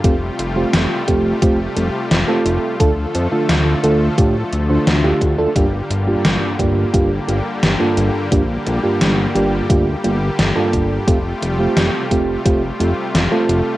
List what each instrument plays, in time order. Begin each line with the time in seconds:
Already playing: supersaw synth F4
0.04 analog synth bass F1, supersaw synth C3 G3 A3 G4, fm electric piano A3 C4 F4 G4, kick, closed hi-hat
0.39 analog synth bass F1, closed hi-hat
0.56 fm electric piano A3 C4 F4 G4
0.73 analog synth bass F1, snare, closed hi-hat
1.08 analog synth bass F1, fm electric piano A3 C4 F4 G4, kick, closed hi-hat
1.42 analog synth bass F1, fm electric piano A3 C4 F4 G4, kick, closed hi-hat
1.76 analog synth bass F1, fm electric piano A3 C4 F4 G4, closed hi-hat
2.11 analog synth bass F1, snare, closed hi-hat
2.28 fm electric piano A3 C4 F4 A4
2.45 analog synth bass F1, closed hi-hat
2.80 analog synth bass D2, fm electric piano D3 A3 D4 F4 A4, supersaw synth D3 F3 A3 A4, kick, closed hi-hat
3.15 analog synth bass F2, closed hi-hat
3.32 fm electric piano D3 A3 D4 F4 A4
3.49 analog synth bass D2, snare, closed hi-hat
3.83 analog synth bass D2, fm electric piano D3 A3 D4 F4 A4, closed hi-hat
4.18 analog synth bass A2, fm electric piano D3 A3 D4 F4 G4, kick, closed hi-hat
4.53 analog synth bass D2, closed hi-hat
4.70 fm electric piano D3 A3 D4 F4 C5
4.87 analog synth bass D2, snare, closed hi-hat
5.04 fm electric piano D3 A3 D4 F4 G4
5.21 analog synth bass D2, kick, closed hi-hat
5.39 fm electric piano A3 D4 F4 A4
5.56 analog synth bass G1, fm electric piano G2 A#3 D4 F4 G4, supersaw synth G3 A#3 G4, kick, closed hi-hat
5.90 analog synth bass G1, closed hi-hat
6.08 fm electric piano G2 A#3 D4 F4 G4
6.25 analog synth bass G1, snare, closed hi-hat
6.59 analog synth bass G1, fm electric piano G2 A#3 D4 F4 G4, kick, closed hi-hat
6.94 analog synth bass G1, fm electric piano G2 A#3 D4 F4 G4, kick, closed hi-hat
7.28 analog synth bass G1, fm electric piano G2 A#3 D4 F4 G4, closed hi-hat
7.63 analog synth bass G1, snare, closed hi-hat
7.80 fm electric piano G2 A#3 D4 F4 A4
7.97 analog synth bass G1, closed hi-hat
8.32 analog synth bass A#1, fm electric piano G2 A#3 D4 F4 G4, kick, closed hi-hat
8.66 analog synth bass A#1, closed hi-hat
8.83 fm electric piano G2 A#3 D4 F4 G4
9.01 analog synth bass G1, snare, closed hi-hat
9.35 analog synth bass G1, fm electric piano G2 A#3 D4 F4 G4, closed hi-hat
9.70 analog synth bass D2, fm electric piano G2 A#3 D4 F4 G4, kick, closed hi-hat
10.04 analog synth bass G1, fm electric piano G2 A#3 D4 F4 G4, closed hi-hat
10.39 analog synth bass G1, snare, closed hi-hat
10.56 fm electric piano G2 A#3 D4 F4 A4
10.73 analog synth bass G1, kick, closed hi-hat
11.07 analog synth bass F1, supersaw synth C3 A3 F4, fm electric piano A3 C4 F4 G4, kick, closed hi-hat
11.42 analog synth bass F1, closed hi-hat
11.59 fm electric piano A3 C4 F4 G4
11.77 analog synth bass F1, snare, closed hi-hat
12.11 analog synth bass F1, fm electric piano A3 C4 F4 G4, kick, closed hi-hat
12.45 analog synth bass F1, fm electric piano A3 C4 F4 G4, kick, closed hi-hat
12.80 analog synth bass F1, fm electric piano A3 C4 F4 G4, closed hi-hat
13.14 analog synth bass F1, snare, closed hi-hat
13.32 fm electric piano A3 C4 F4 A4
13.49 analog synth bass F1, closed hi-hat